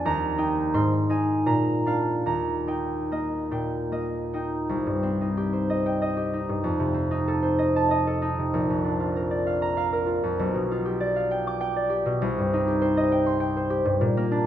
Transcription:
harp
Already playing: A#3
0.05 D#2 A#5
0.38 D#4 G5
0.74 G#2 C6
1.10 D#4 G#5
1.46 A#2 A#5
1.86 D4 F5
2.26 D#2 A#5
2.67 D#4 G5
3.12 A#3 D#5
3.51 A#2 G5
3.92 A#3 D#5
4.34 D#4 G5
4.69 C2
4.87 G2
5.03 C4
5.21 D#4
5.37 G4
5.53 C5
5.70 D#5
5.86 G5
6.02 D#5
6.17 G4
6.33 D#4
6.49 G2
6.64 F2
6.79 C3
6.94 C4
7.11 D#4
7.28 A4
7.43 C5
7.59 D#5
7.76 A5
7.91 D#5
8.07 A4
8.22 D#4
8.39 C3
8.54 A#1
8.70 F2
8.84 D4
9.00 F4
9.16 A#4
9.31 D5
9.47 F5
9.62 A#5
9.77 F5
9.93 A#4
10.06 F4
10.24 F2
10.39 B1
10.54 B2
10.71 F4
10.85 G4
11.01 D5
11.16 F5
11.31 G5
11.47 D6
11.61 G5
11.76 D5
11.90 G4
12.06 B2
12.22 C2
12.39 G2
12.53 D#4
12.68 G4
12.82 C5
12.97 D#5
13.12 G5
13.26 C6
13.40 G5
13.57 C5
13.70 G4
13.85 G2
14.01 A#2
14.17 A#3
14.32 D4

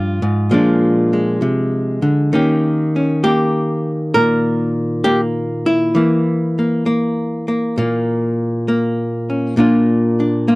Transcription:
hollow-body jazz guitar
Already playing: G2 F3 D#4 F4
0.22 G#2
0.51 A#2 F3 G#3 D4
1.13 G#3
1.42 C3
2.02 D3
2.33 D#3 A#3 C#4 G4
2.96 C#4
3.24 A#3 G4
4.14 A#2 A#4
5.04 A#3 G4
5.66 E4
5.95 E3 A#3
6.59 A#3
6.86 A#3
7.48 A#3
7.78 A#2 A#3
8.68 A#3
9.30 C#4
9.57 A#2 A#3 D4 F4
10.20 D4
10.48 A#3 F4

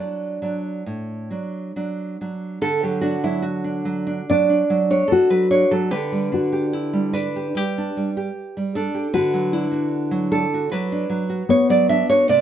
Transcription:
nylon-string guitar
Already playing: D4
0.00 F#3 D4
0.42 F#3 D4
0.86 A2
1.31 F#3 D4
1.76 F#3 D4
2.21 F#3 D4
2.62 D3 A4
2.83 F#3 G4
3.01 D4 F#4
3.24 F#3 E4
3.42 F#4
3.64 D4
3.85 F#3
4.07 D4
4.30 F#3 D4 D5
4.50 D4
4.70 F#3
4.90 D4 C#5
5.08 A4
5.12 F#4
5.30 F#3 B4
5.51 D4 C#5
5.71 F#3 A4
5.91 D3 G4 B4
6.12 G3
6.32 D4 F#4
6.53 G4
6.73 E4
6.93 G3
7.13 D4 B4
7.36 G4
7.55 G3 G4
7.78 D4
7.97 G3
8.17 G4
8.57 G3
8.75 D4 A4
8.95 G4
9.14 D3 F#4 B4
9.34 F#3
9.53 D4 E4
9.72 F#4
10.11 F#3
10.32 D4 A4
10.54 F#4
10.72 F#3 D4 B4
10.92 D4
11.10 F#3
11.30 F#4
11.49 B3 C#5
11.70 F#3 D5
11.89 D4 E5
12.09 F#4 C#5
12.28 C3 A3 D5

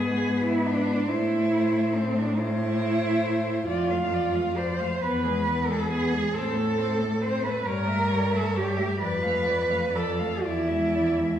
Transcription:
cello
Already playing: G#2 B3 G#4 B4
0.45 E4
0.66 D4
1.08 A2 A3 E4 C5
1.95 C4
2.17 D4
2.38 A3 E4 C5
3.66 F2 F4
3.70 F3 D5
3.90 A3 F5
4.12 F3 D5
4.34 A3 F5
4.57 F3 C5 D5
4.80 A3 F5
5.01 E2 B3 B4
5.24 G#3 G#4
5.47 B3 B4
5.68 G#3 G#4 A4
5.90 B3 G#4 B4
6.12 G#3 G#4
6.32 A2 C4 A4
6.36 C5
6.53 A3 A4
6.76 C4 C5
6.98 A3 A4
7.20 C4 C5
7.42 A3 A4 B4
7.65 G2 G3 A#4 C#5
7.87 A3 E5
8.10 G3 C#5
8.32 A3 A4 E5
8.54 G3 G4 C#5
8.77 A3 E5
9.00 F2 F3 B4 D5
9.23 A3 F5
9.46 F3 D5
9.70 A3 F5
9.92 F3 A4 D5
10.19 A3 F5
10.45 E2 F3 E4 D5
10.68 G#3 E5
10.93 F3 D5
11.19 G#3 E5

